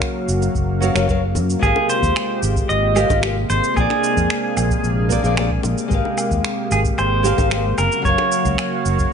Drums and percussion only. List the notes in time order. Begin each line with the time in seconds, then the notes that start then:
0.01 finger snap, kick, shaker
0.29 shaker
0.42 high bongo, shaker
0.55 kick, shaker
0.82 shaker
0.96 finger snap, shaker
1.09 kick, shaker
1.35 high bongo, shaker
1.50 shaker
1.62 kick, shaker
1.76 high bongo
1.90 shaker
2.02 kick, shaker
2.16 finger snap, low woodblock, shaker
2.43 shaker
2.56 kick, shaker
2.70 shaker
2.96 low woodblock, shaker
3.10 kick, high bongo, shaker
3.23 finger snap, shaker
3.50 shaker
3.64 shaker
3.76 kick, low woodblock, shaker
3.90 finger snap, high bongo
4.04 shaker
4.17 kick, shaker
4.30 finger snap, shaker
4.57 low woodblock, shaker
4.70 kick, shaker
4.84 shaker
5.10 kick, shaker
5.24 shaker
5.37 finger snap, low woodblock, shaker
5.51 kick
5.63 high bongo, shaker
5.78 shaker
5.91 kick, shaker
6.05 high bongo
6.18 low woodblock, shaker
6.31 kick, shaker
6.45 finger snap, shaker
6.72 shaker
6.85 kick, shaker
6.98 low woodblock, shaker
7.25 shaker
7.38 kick, high bongo, shaker
7.51 finger snap, shaker
7.78 low woodblock, shaker
7.92 shaker
8.05 kick, shaker
8.18 finger snap, high bongo
8.32 shaker
8.45 kick, shaker
8.58 finger snap, low woodblock, shaker
8.86 shaker
8.99 kick, shaker